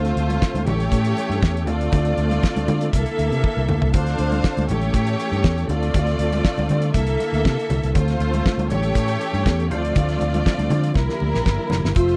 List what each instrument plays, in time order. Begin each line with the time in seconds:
Already playing: fingered electric bass D2, tonewheel organ D3 C4 F4 A4, string section A3 F4 C5
0.05 snare, closed hi-hat
0.16 fingered electric bass D2, closed hi-hat, muted conga
0.30 closed hi-hat, high conga
0.42 kick, snare, muted conga
0.54 fingered electric bass D2, closed hi-hat, high conga
0.66 fingered electric bass A1, tonewheel organ E3 C#4 G4, string section A3 G4 C#5, closed hi-hat, muted conga, high conga, low conga
0.80 closed hi-hat
0.92 fingered electric bass A2, kick, closed hi-hat, muted conga
1.05 closed hi-hat
1.17 closed hi-hat, muted conga
1.30 fingered electric bass G2, closed hi-hat
1.43 fingered electric bass E2, kick, snare
1.57 closed hi-hat
1.66 fingered electric bass D2, tonewheel organ D3 C4 F4, string section A3 F4 D5, closed hi-hat, muted conga, low conga
1.81 closed hi-hat
1.92 fingered electric bass D2, kick, closed hi-hat, low conga
2.05 closed hi-hat
2.17 fingered electric bass D2, closed hi-hat, muted conga
2.31 closed hi-hat, high conga
2.43 kick, snare, muted conga
2.56 fingered electric bass D2, closed hi-hat, high conga
2.68 fingered electric bass D3, closed hi-hat, muted conga, high conga, low conga
2.81 closed hi-hat
2.93 fingered electric bass C2, tonewheel organ A#3 E4, string section A#3 A4 E5, kick, closed hi-hat
3.06 closed hi-hat
3.18 fingered electric bass D2, closed hi-hat, muted conga
3.32 fingered electric bass C3, closed hi-hat
3.44 kick, high tom
3.57 fingered electric bass C2
3.69 fingered electric bass D2, mid tom, low conga
3.82 fingered electric bass C2, floor tom
3.93 fingered electric bass D2, tonewheel organ C4 F4, string section D4 C5 F5, kick, closed hi-hat, low conga
4.06 snare, closed hi-hat
4.18 fingered electric bass D2, closed hi-hat, muted conga
4.32 closed hi-hat, high conga
4.44 kick, snare, muted conga
4.57 fingered electric bass D2, closed hi-hat, high conga
4.68 fingered electric bass A1, tonewheel organ E3 C#4 G4, string section A3 G4 C#5, closed hi-hat, muted conga, high conga, low conga
4.82 closed hi-hat
4.94 fingered electric bass A2, kick, closed hi-hat, muted conga
5.07 closed hi-hat
5.20 closed hi-hat
5.32 fingered electric bass G2, closed hi-hat
5.44 fingered electric bass E2, kick, snare, muted conga
5.58 closed hi-hat
5.68 fingered electric bass D2, tonewheel organ D3 C4 F4, string section A3 F4 D5, closed hi-hat, muted conga, low conga
5.83 closed hi-hat
5.94 fingered electric bass D2, kick, closed hi-hat, muted conga, low conga
6.07 snare, closed hi-hat
6.19 fingered electric bass D2, closed hi-hat
6.32 closed hi-hat, high conga
6.44 kick, snare, muted conga
6.57 fingered electric bass D2, closed hi-hat, high conga
6.69 fingered electric bass D3, closed hi-hat, high conga, low conga
6.82 closed hi-hat
6.94 fingered electric bass C2, string section A#3 A4 E5, tonewheel organ A#3 E4, kick, closed hi-hat
7.07 closed hi-hat
7.20 closed hi-hat, muted conga
7.33 fingered electric bass D2, closed hi-hat
7.45 fingered electric bass C3, kick, snare
7.59 closed hi-hat
7.70 fingered electric bass C2, closed hi-hat, muted conga, low conga
7.83 fingered electric bass C2, closed hi-hat
7.95 fingered electric bass D2, string section A3 F4 C5, tonewheel organ C4 F4, kick, closed hi-hat, low conga
8.08 snare, closed hi-hat
8.20 fingered electric bass D2, closed hi-hat, muted conga
8.34 closed hi-hat, high conga
8.46 kick, snare
8.58 fingered electric bass D2, closed hi-hat, high conga
8.70 fingered electric bass A1, tonewheel organ E3 C#4 G4, string section A3 G4 C#5, closed hi-hat, high conga, low conga
8.83 closed hi-hat
8.95 fingered electric bass A2, kick, closed hi-hat, muted conga
9.08 closed hi-hat
9.21 closed hi-hat
9.33 fingered electric bass G2, closed hi-hat
9.46 fingered electric bass E2, kick, snare, muted conga
9.60 closed hi-hat
9.71 fingered electric bass D2, tonewheel organ D3 F3 C4 F4, string section A3 F4 D5, closed hi-hat, muted conga, low conga
9.85 closed hi-hat
9.96 fingered electric bass D2, kick, closed hi-hat, muted conga, low conga
10.09 snare, closed hi-hat
10.21 fingered electric bass D2, closed hi-hat, muted conga
10.34 closed hi-hat, high conga
10.46 kick, snare
10.59 fingered electric bass D2, closed hi-hat, high conga
10.70 fingered electric bass D3, closed hi-hat, muted conga, high conga, low conga
10.84 closed hi-hat
10.94 fingered electric bass C2, string section G3 E4 A#4, tonewheel organ A#3 E4, kick, snare, muted conga
11.10 snare
11.20 fingered electric bass D2, muted conga
11.34 fingered electric bass A#1, snare
11.45 fingered electric bass G1, kick, snare, muted conga
11.70 fingered electric bass F1, snare, muted conga, low conga
11.84 fingered electric bass G1, snare
11.95 fingered electric bass F1, tonewheel organ C3 F3 A3 E5, string section A3 F4 C5, alto flute F4, kick, closed hi-hat, muted conga
12.09 closed hi-hat